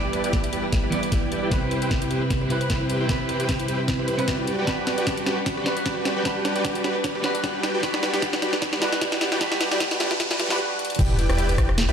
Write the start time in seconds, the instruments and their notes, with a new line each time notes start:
Already playing: clean electric guitar E3 B3 G4 D5, string section G3 D4 E4 B4, supersaw synth E4 G4 B4 D5 G5
0.04 synth arpeggio sound G4
0.13 synth arpeggio sound B4, closed hi-hat
0.24 supersaw synth E4 G4 B4 D5 G5, synth arpeggio sound D5, closed hi-hat
0.33 synth arpeggio sound E5, kick, snare, closed hi-hat
0.44 synth arpeggio sound E4, closed hi-hat
0.53 supersaw synth E4 G4 B4 D5 G5, synth arpeggio sound G4, closed hi-hat
0.64 synth arpeggio sound B4
0.72 synth arpeggio sound E4, kick, snare, closed hi-hat
0.83 supersaw synth E4 G4 B4 D5 B5, synth arpeggio sound G4
0.90 clean electric guitar E3 B3 G4 D5, synth arpeggio sound B4, closed hi-hat
1.03 synth arpeggio sound D5, closed hi-hat
1.12 supersaw synth E4 G4 B4 D5 G5, synth arpeggio sound E5, kick, snare, closed hi-hat
1.23 synth arpeggio sound E4
1.32 synth arpeggio sound G4, closed hi-hat
1.43 supersaw synth E4 G4 B4 D5 G5, synth arpeggio sound B4
1.49 clean electric guitar C3 C4 E4 B4, string section C4 B4, supersaw synth E4 G4 B4 C5 G5, synth arpeggio sound E4, kick, snare, closed hi-hat
1.62 synth arpeggio sound G4
1.71 synth arpeggio sound B4, closed hi-hat
1.82 supersaw synth E4 G4 B4 C5 G5, synth arpeggio sound C5, closed hi-hat
1.91 synth arpeggio sound E5, kick, snare, closed hi-hat
2.02 synth arpeggio sound E4, closed hi-hat
2.11 supersaw synth E4 G4 B4 C5 G5, synth arpeggio sound G4, closed hi-hat
2.21 synth arpeggio sound B4
2.30 synth arpeggio sound E4, kick, snare, closed hi-hat
2.41 supersaw synth E4 G4 B4 C5 B5, synth arpeggio sound G4
2.48 clean electric guitar C3 C4 E4 B4, synth arpeggio sound B4, closed hi-hat
2.61 synth arpeggio sound C5, closed hi-hat
2.70 supersaw synth E4 G4 B4 C5 G5, synth arpeggio sound E5, kick, snare, closed hi-hat
2.81 synth arpeggio sound E4
2.90 synth arpeggio sound G4, closed hi-hat
3.00 supersaw synth E4 G4 B4 C5 G5, synth arpeggio sound B4
3.07 clean electric guitar C3 C4 E4, supersaw synth E4 G4 B4 C5 G5, synth arpeggio sound E4, kick, snare, closed hi-hat
3.11 clean electric guitar B4
3.20 synth arpeggio sound G4
3.29 synth arpeggio sound B4, closed hi-hat
3.40 supersaw synth E4 G4 B4 C5 G5, synth arpeggio sound C5, closed hi-hat
3.49 synth arpeggio sound E5, kick, snare, closed hi-hat
3.60 synth arpeggio sound E4, closed hi-hat
3.68 supersaw synth E4 G4 B4 C5 G5, synth arpeggio sound G4, closed hi-hat
3.79 synth arpeggio sound B4
3.88 synth arpeggio sound E4, kick, snare, closed hi-hat
3.99 supersaw synth E4 G4 B4 C5 B5, synth arpeggio sound G4
4.08 synth arpeggio sound B4, closed hi-hat
4.18 clean electric guitar C3 C4 E4 B4, synth arpeggio sound C5, closed hi-hat
4.28 supersaw synth F#4 G4 B4 D5 G5, synth arpeggio sound E5, kick, snare, closed hi-hat
4.39 synth arpeggio sound E4
4.47 string section D4 F#4 B4, synth arpeggio sound G4, closed hi-hat
4.58 supersaw synth F#4 G4 B4 D5 G5, synth arpeggio sound B4
4.65 clean electric guitar G3 D4 F#4, supersaw synth F#4 G4 B4 D5 G5, synth arpeggio sound F#4, kick, snare, closed hi-hat, riser
4.69 clean electric guitar B4
4.78 synth arpeggio sound G4
4.87 synth arpeggio sound B4, snare, closed hi-hat
4.98 supersaw synth F#4 G4 B4 D5 G5, synth arpeggio sound D5, closed hi-hat
5.07 synth arpeggio sound F#5, kick, snare, closed hi-hat
5.17 synth arpeggio sound F#4, closed hi-hat
5.26 supersaw synth F#4 G4 B4 D5 G5, synth arpeggio sound G4, snare, closed hi-hat
5.37 synth arpeggio sound B4
5.46 synth arpeggio sound F#4, kick, snare, closed hi-hat
5.57 supersaw synth F#4 G4 B4 D5 B5, synth arpeggio sound G4
5.64 clean electric guitar G3 D4 F#4, synth arpeggio sound B4, snare, closed hi-hat
5.68 clean electric guitar B4
5.77 synth arpeggio sound D5, closed hi-hat
5.86 supersaw synth F#4 G4 B4 D5 G5, synth arpeggio sound F#5, kick, snare, closed hi-hat
5.97 synth arpeggio sound F#4
6.05 synth arpeggio sound G4, snare, closed hi-hat
6.16 supersaw synth F#4 G4 B4 D5 G5, synth arpeggio sound B4
6.23 clean electric guitar G3 D4 F#4 B4, synth arpeggio sound F#4, supersaw synth F#4 G4 B4 D5 G5, kick, snare, closed hi-hat
6.36 synth arpeggio sound G4
6.45 synth arpeggio sound B4, snare, closed hi-hat
6.55 supersaw synth F#4 G4 B4 D5 G5, synth arpeggio sound D5, closed hi-hat
6.64 synth arpeggio sound F#5, kick, snare, closed hi-hat
6.75 synth arpeggio sound F#4, closed hi-hat
6.84 supersaw synth F#4 G4 B4 D5 G5, synth arpeggio sound G4, snare, closed hi-hat
6.95 synth arpeggio sound B4
7.04 synth arpeggio sound F#4, kick, snare, closed hi-hat
7.15 supersaw synth F#4 G4 B4 D5 B5, synth arpeggio sound G4
7.22 clean electric guitar G3 D4 F#4, synth arpeggio sound B4, snare, closed hi-hat
7.26 clean electric guitar B4
7.34 synth arpeggio sound D5, closed hi-hat
7.44 supersaw synth F#4 G4 B4 D5 G5, synth arpeggio sound F#5, kick, snare, closed hi-hat
7.54 synth arpeggio sound F#4
7.63 synth arpeggio sound G4, snare, closed hi-hat
7.74 supersaw synth F#4 G4 B4 D5 G5, synth arpeggio sound B4
7.81 clean electric guitar G3 D4 F#4, synth arpeggio sound F#4, supersaw synth F#4 G4 B4 D5 G5, kick, snare, closed hi-hat
7.85 clean electric guitar B4
7.94 synth arpeggio sound G4, snare
8.03 synth arpeggio sound B4, snare, closed hi-hat
8.14 supersaw synth F#4 G4 B4 D5 G5, synth arpeggio sound D5, snare, closed hi-hat
8.22 synth arpeggio sound F#5, kick, snare, closed hi-hat
8.33 synth arpeggio sound F#4, snare, closed hi-hat
8.42 supersaw synth F#4 G4 B4 D5 G5, synth arpeggio sound G4, snare, closed hi-hat
8.53 synth arpeggio sound B4, snare
8.62 synth arpeggio sound F#4, kick, snare, closed hi-hat
8.73 supersaw synth F#4 G4 B4 D5 B5, synth arpeggio sound G4, snare
8.80 clean electric guitar G3 D4 F#4 B4, synth arpeggio sound B4, snare, closed hi-hat
8.92 synth arpeggio sound D5, snare, closed hi-hat
9.01 supersaw synth F#4 G4 B4 D5 G5, synth arpeggio sound F#5, kick, snare, closed hi-hat
9.12 synth arpeggio sound F#4, snare
9.21 synth arpeggio sound G4, snare, closed hi-hat
9.32 supersaw synth F#4 G4 B4 D5 G5, synth arpeggio sound B4, snare
9.39 clean electric guitar G3 D4 F#4, synth arpeggio sound F#4, supersaw synth F#4 G4 B4 D5 G5, kick, snare, closed hi-hat
9.43 clean electric guitar B4
9.52 synth arpeggio sound G4, snare
9.61 synth arpeggio sound B4, snare, closed hi-hat
9.71 supersaw synth F#4 G4 B4 D5 G5, synth arpeggio sound D5, snare, closed hi-hat
9.80 synth arpeggio sound F#5, kick, snare, closed hi-hat
9.91 synth arpeggio sound F#4, snare, closed hi-hat
10.00 supersaw synth F#4 G4 B4 D5 G5, synth arpeggio sound G4, snare, closed hi-hat
10.11 synth arpeggio sound B4, snare
10.20 synth arpeggio sound F#4, kick, snare, closed hi-hat
10.31 supersaw synth F#4 G4 B4 D5 B5, synth arpeggio sound G4, snare
10.40 synth arpeggio sound B4, snare, closed hi-hat
10.48 clean electric guitar G3 D4 F#4 B4, supersaw synth F#4 G4 B4 D5 F#5, synth arpeggio sound D5, snare, closed hi-hat
10.79 closed hi-hat
10.85 closed hi-hat
10.90 closed hi-hat
10.95 string section D4 G4, closed hi-hat
10.99 sub bass E1, string section E3 B3, synth arpeggio sound E4, supersaw synth E4 G4 B4 D5 G5, digital synth lead G5, kick, closed hi-hat, crash, sub drop
11.09 synth arpeggio sound G4
11.18 synth arpeggio sound B4, closed hi-hat
11.29 sub bass E1, synth arpeggio sound E4, supersaw synth E4 G4 B4 D5 G5, digital synth lead G5, cross-stick, closed hi-hat
11.38 synth arpeggio sound G4, closed hi-hat
11.49 synth arpeggio sound B4, closed hi-hat
11.58 sub bass E1, synth arpeggio sound E4, supersaw synth E4 G4 B4 D5 G5, digital synth lead G5, kick, cross-stick, closed hi-hat
11.69 synth arpeggio sound G4, cross-stick
11.78 synth arpeggio sound E4, snare, closed hi-hat
11.89 sub bass E1, supersaw synth E4 G4 B4 D5 B5, synth arpeggio sound G4, digital synth lead B5